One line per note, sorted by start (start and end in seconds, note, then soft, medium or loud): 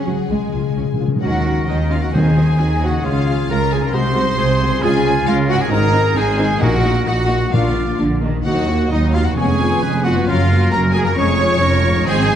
0.00 0.29 C#3 medium
0.00 0.14 F#3 soft
0.00 0.32 F#4 soft
0.00 0.76 G#4 soft
0.00 1.04 G#4 medium
0.00 0.30 F#5 medium
0.06 0.16 C#2 soft
0.06 0.30 F#3 medium
0.06 0.14 F#4 soft
0.15 0.32 F#3 soft
0.28 0.38 C#2 medium
0.28 1.25 C#3 soft
0.28 0.38 C#3 soft
0.28 0.52 G#3 medium
0.28 0.76 G#3 medium
0.28 1.02 G#5 soft
0.40 0.46 C#3 soft
0.47 0.54 C#3 soft
0.47 1.07 G#3 soft
0.53 0.62 C#2 soft
0.53 0.61 C#3 soft
0.53 0.61 F4 soft
0.62 0.68 C#3 soft
0.62 0.92 F4 soft
0.70 0.76 C#3 soft
0.76 0.86 C#2 soft
0.76 0.84 C#3 soft
0.76 0.84 C#4 soft
0.76 1.25 G#4 soft
0.85 0.92 C#3 soft
0.93 1.00 C#3 medium
0.93 1.26 F4 soft
1.00 1.08 C#2 soft
1.00 1.07 C#3 medium
1.00 1.08 F4 soft
1.06 1.15 C#3 medium
1.06 1.95 D#3 soft
1.06 1.25 G#3 soft
1.10 2.10 C#4 soft
1.15 1.23 C#3 medium
1.15 2.04 D#4 soft
1.19 1.63 D#2 medium
1.19 1.63 D#3 medium
1.19 1.38 F#3 soft
1.19 1.38 C#4 soft
1.19 1.31 C#4 medium
1.19 2.08 F#4 soft
1.19 1.65 F#4 medium
1.19 1.31 F#4 soft
1.19 1.71 F#4 medium
1.19 2.10 A#4 medium
1.19 1.64 F#5 medium
1.19 1.66 F#5 medium
1.24 1.66 F#4 medium
1.45 1.54 C#4 soft
1.45 1.53 F#4 soft
1.67 2.09 D#2 medium
1.67 2.09 D#3 medium
1.67 1.76 C#4 medium
1.67 1.90 D#4 medium
1.67 1.93 D#4 medium
1.67 1.92 D#4 medium
1.67 1.75 F#4 soft
1.67 1.91 D#5 medium
1.90 1.98 C#4 soft
1.90 1.96 F4 medium
1.90 2.03 F4 medium
1.90 1.97 F4 medium
1.90 1.98 F#4 soft
1.90 2.03 F5 medium
1.96 2.98 D#3 medium
2.00 3.00 C4 soft
2.00 2.08 F#4 medium
2.00 2.16 F#4 medium
2.00 2.14 F#5 medium
2.00 2.08 F#5 soft
2.04 3.02 D#4 soft
2.04 2.15 F#4 soft
2.09 2.29 F#3 soft
2.09 3.04 F#4 soft
2.13 2.54 D#2 medium
2.13 2.54 D#3 medium
2.13 2.79 D#3 medium
2.13 2.30 C4 medium
2.13 2.21 C4 medium
2.13 2.22 F#4 soft
2.13 2.82 G#4 medium
2.13 2.81 G#4 medium
2.13 2.60 C5 medium
2.13 2.83 G#5 medium
2.13 2.82 G#5 medium
2.36 2.45 C4 soft
2.36 2.44 F#4 soft
2.58 2.99 D#2 medium
2.58 3.00 D#3 medium
2.58 2.66 C4 soft
2.58 2.66 F#4 soft
2.58 3.49 G#4 medium
2.82 2.90 C4 soft
2.82 3.07 F#4 medium
2.82 2.91 F#4 medium
2.82 3.06 F#4 medium
2.82 3.05 F#4 medium
2.82 3.04 F#5 medium
2.82 3.06 F#5 medium
2.87 3.87 C#3 medium
2.91 3.89 C#4 soft
2.95 3.91 F4 soft
3.00 3.88 G#4 soft
3.04 3.44 C#2 medium
3.04 3.44 C#3 medium
3.04 3.20 G#3 medium
3.04 3.12 G#3 medium
3.04 3.20 C#4 medium
3.04 3.13 F4 medium
3.04 3.50 F4 medium
3.04 3.52 F4 medium
3.04 3.49 F4 medium
3.04 3.49 F5 medium
3.26 3.34 G#3 medium
3.26 3.35 F4 soft
3.49 3.89 C#2 medium
3.49 3.89 C#3 medium
3.49 3.58 G#3 medium
3.49 3.95 F4 medium
3.49 3.58 F4 medium
3.49 3.74 A#4 medium
3.49 3.76 A#4 loud
3.49 3.72 A#4 medium
3.49 3.57 A#5 medium
3.49 3.73 A#5 loud
3.72 4.75 C3 medium
3.72 3.80 G#3 medium
3.72 3.81 F4 medium
3.72 3.84 G#4 medium
3.72 3.83 G#4 medium
3.72 3.85 G#4 medium
3.72 3.86 G#5 medium
3.72 3.83 G#5 medium
3.79 4.77 D#4 soft
3.79 3.96 A#4 medium
3.79 3.94 A#5 medium
3.84 4.80 F#4 soft
3.84 3.96 A#4 medium
3.84 3.94 A#4 medium
3.84 3.96 A#5 medium
3.89 4.76 G#4 soft
3.89 4.82 C6 loud
3.93 4.33 C2 medium
3.93 4.33 C3 medium
3.93 4.09 G#3 medium
3.93 4.01 G#3 medium
3.93 4.37 D#4 medium
3.93 4.09 F#4 medium
3.93 4.02 F#4 medium
3.93 4.84 C5 loud
3.93 4.83 C5 loud
3.93 4.83 C5 medium
3.93 4.83 C6 medium
4.15 4.23 G#3 medium
4.15 4.23 F#4 medium
4.37 4.77 C2 medium
4.37 4.77 C3 medium
4.37 4.47 G#3 medium
4.37 4.46 F#4 medium
4.37 4.86 G#4 medium
4.62 5.65 C#3 medium
4.62 4.70 G#3 medium
4.62 4.70 F#4 medium
4.69 5.67 C#4 medium
4.73 5.69 F4 medium
4.77 5.66 G#4 medium
4.81 5.22 C#2 medium
4.81 5.23 C#3 medium
4.81 4.99 G#3 medium
4.81 4.92 G#3 medium
4.81 4.99 F4 medium
4.81 4.91 F4 medium
4.81 5.30 F4 medium
4.81 5.27 G#4 loud
4.81 5.27 G#4 medium
4.81 5.27 G#4 loud
4.81 5.26 G#5 loud
4.81 5.28 G#5 medium
5.04 5.12 G#3 medium
5.04 5.13 F4 medium
5.26 5.67 C#2 medium
5.26 5.68 C#3 medium
5.26 5.35 G#3 medium
5.26 5.35 F4 medium
5.26 5.52 F4 medium
5.26 5.49 F4 medium
5.26 5.36 F4 medium
5.26 5.75 A#4 medium
5.26 5.34 F5 loud
5.26 5.53 F5 medium
5.48 5.56 G#3 medium
5.48 5.57 F4 medium
5.48 5.55 F#4 medium
5.48 5.62 F#4 medium
5.48 5.62 F#4 loud
5.48 5.61 F#5 loud
5.48 5.62 F#5 loud
5.54 6.55 G#2 medium
5.59 6.57 C4 medium
5.59 5.72 G#4 medium
5.59 5.67 G#4 medium
5.59 5.73 G#4 medium
5.59 5.72 G#5 loud
5.63 6.51 D#4 medium
5.63 5.73 G#5 medium
5.67 6.11 G#1 medium
5.67 5.77 C4 medium
5.67 5.77 D#4 medium
5.67 6.62 G#4 medium
5.71 6.12 G#2 medium
5.71 5.88 C4 medium
5.71 5.88 D#4 medium
5.71 6.17 G#4 medium
5.71 6.20 A#4 loud
5.71 6.18 A#4 loud
5.71 6.17 A#4 loud
5.71 6.16 A#5 loud
5.71 6.20 A#5 loud
5.93 6.01 C4 medium
5.93 6.01 D#4 medium
6.15 6.57 G#1 loud
6.15 6.57 G#2 medium
6.15 6.23 C4 medium
6.15 6.23 D#4 medium
6.15 6.63 G#4 medium
6.15 6.62 G#4 medium
6.15 6.66 G#4 loud
6.15 6.62 C5 loud
6.15 6.62 G#5 loud
6.15 6.62 G#5 medium
6.38 6.46 C4 medium
6.38 6.46 D#4 medium
6.43 7.33 A#2 medium
6.47 7.38 A#3 medium
6.52 7.51 D#4 medium
6.57 6.67 A#3 medium
6.57 6.67 D#4 medium
6.57 7.47 A#4 medium
6.57 7.04 F#5 loud
6.61 7.02 A#1 medium
6.61 7.02 A#2 medium
6.61 7.27 A#2 medium
6.61 6.78 A#3 medium
6.61 6.77 D#4 medium
6.61 7.07 F#4 medium
6.61 7.06 F#4 medium
6.61 7.08 F#4 medium
6.61 7.09 A#4 medium
6.61 7.07 F#5 medium
6.83 6.91 A#3 medium
6.83 6.91 D#4 medium
7.06 7.48 A#1 medium
7.06 7.48 A#2 medium
7.06 7.14 A#3 medium
7.06 7.14 D#4 medium
7.06 7.53 F#4 medium
7.06 7.40 F#4 medium
7.06 7.53 F#4 medium
7.06 7.55 F#4 medium
7.06 7.52 F#5 loud
7.06 7.53 F#5 medium
7.28 7.36 A#3 medium
7.28 7.36 D#4 medium
7.35 8.39 A#2 medium
7.39 8.32 A#3 soft
7.44 8.43 D4 soft
7.51 7.95 A#1 medium
7.51 7.94 A#2 medium
7.51 8.19 A#2 medium
7.51 7.59 A#3 medium
7.51 7.70 A#3 medium
7.51 7.59 D4 medium
7.51 7.70 D4 medium
7.51 8.00 F4 medium
7.51 7.99 F4 medium
7.51 8.00 F4 medium
7.51 8.22 D5 medium
7.51 7.98 F5 medium
7.51 7.99 F5 medium
7.74 7.82 A#3 medium
7.74 7.82 D4 medium
7.99 8.40 A#1 medium
7.99 8.21 D3 medium
7.99 8.07 A#3 soft
7.99 8.07 D4 medium
8.22 8.46 D#3 medium
8.22 8.30 A#3 medium
8.22 8.30 D4 medium
8.28 9.30 D#3 medium
8.33 9.32 A#3 medium
8.38 9.35 D#4 soft
8.38 9.37 A#4 medium
8.44 8.86 D#2 medium
8.44 8.87 D#2 medium
8.44 9.11 D#3 medium
8.44 8.67 F#3 medium
8.44 8.62 A#3 medium
8.44 8.62 D#4 medium
8.44 8.68 D#4 medium
8.44 8.93 F#4 medium
8.44 8.89 F#4 medium
8.44 8.88 F#5 medium
8.44 8.95 F#5 medium
8.68 8.92 A#3 medium
8.68 8.92 F#4 medium
8.91 9.32 D#2 medium
8.91 9.14 F#3 medium
8.91 9.15 D#4 medium
8.91 9.16 D#4 medium
8.91 9.15 D#4 medium
8.91 9.14 D#5 medium
8.91 9.16 D#5 medium
9.13 9.37 A#3 medium
9.13 9.27 F4 medium
9.13 9.26 F4 medium
9.13 9.20 F4 medium
9.13 9.37 F#4 medium
9.13 9.25 F5 medium
9.19 10.20 F2 medium
9.23 10.22 B3 soft
9.23 9.37 F#4 medium
9.23 9.37 F#5 medium
9.23 9.38 F#5 medium
9.28 10.17 C#4 soft
9.32 9.58 C#4 medium
9.32 10.21 C#5 soft
9.36 9.77 F1 medium
9.36 9.77 F2 medium
9.36 9.58 G#3 medium
9.36 9.53 B3 medium
9.36 9.53 C#4 medium
9.36 10.05 G#4 medium
9.36 10.04 G#4 medium
9.36 9.84 C#5 medium
9.36 10.03 G#5 medium
9.36 10.04 G#5 medium
9.60 9.82 B3 medium
9.60 9.83 F4 medium
9.82 10.22 F1 medium
9.82 10.22 F2 medium
9.82 10.05 G#3 medium
9.82 10.05 C#4 medium
9.82 10.31 B4 medium
10.04 10.27 B3 medium
10.04 10.27 F4 medium
10.04 10.27 F#4 medium
10.04 10.29 F#4 medium
10.04 10.26 F#5 medium
10.04 10.27 F#5 medium
10.09 11.10 F#2 medium
10.14 11.12 A#3 medium
10.18 11.07 C#4 medium
10.22 10.42 A#3 medium
10.22 10.42 C#4 medium
10.22 11.12 C#5 medium
10.22 10.70 F5 medium
10.27 10.67 F#1 medium
10.27 10.67 F#2 medium
10.27 10.49 F#3 medium
10.27 10.49 C#4 medium
10.27 10.71 F4 medium
10.27 10.72 F4 medium
10.27 10.73 F4 medium
10.27 11.18 A#4 medium
10.27 10.71 F5 medium
10.51 10.73 A#3 medium
10.51 10.73 F#4 medium
10.71 11.13 F#1 medium
10.71 11.12 F#2 medium
10.71 10.95 F#3 medium
10.71 10.95 C#4 medium
10.71 10.94 A#4 medium
10.71 10.83 A#4 loud
10.71 10.95 A#4 medium
10.71 10.95 A#5 medium
10.71 10.79 A#5 loud
10.92 11.17 A#3 medium
10.92 11.17 F#4 medium
10.92 11.05 G#4 medium
10.92 11.10 G#4 medium
10.92 11.04 G#5 loud
10.92 11.07 G#5 medium
10.96 11.99 F2 medium
10.96 11.07 G#4 medium
11.04 11.91 G#3 medium
11.04 11.17 A#4 medium
11.04 11.19 A#4 medium
11.04 11.16 A#5 medium
11.08 12.04 C#4 medium
11.08 11.20 A#4 medium
11.13 11.56 F2 medium
11.13 11.32 C#4 medium
11.13 12.06 C#5 medium
11.13 12.04 C#5 loud
11.13 12.03 C#6 loud
11.13 12.04 C#6 medium
11.17 11.57 F1 medium
11.17 11.38 F3 medium
11.17 11.33 G#3 medium
11.17 11.38 C#4 medium
11.17 11.63 G#4 medium
11.17 12.06 C#5 loud
11.39 11.61 G#3 medium
11.39 11.61 F4 medium
11.59 12.01 F1 medium
11.59 12.01 F2 medium
11.59 11.83 F3 medium
11.59 11.83 C#4 medium
11.59 12.06 A#4 medium
11.81 12.05 G#3 medium
11.81 12.05 F4 medium
11.88 12.36 G#2 medium
11.92 12.36 G#3 medium
11.97 12.36 D#4 medium
12.02 12.26 D#3 medium
12.02 12.26 C4 medium
12.02 12.36 C5 medium
12.02 12.36 G#5 loud
12.06 12.36 G#1 loud
12.06 12.36 G#2 medium
12.06 12.22 G#3 medium
12.06 12.22 C4 medium
12.06 12.36 G#4 loud
12.06 12.36 C5 loud
12.06 12.36 G#5 loud
12.28 12.36 G#3 medium
12.28 12.36 D#4 medium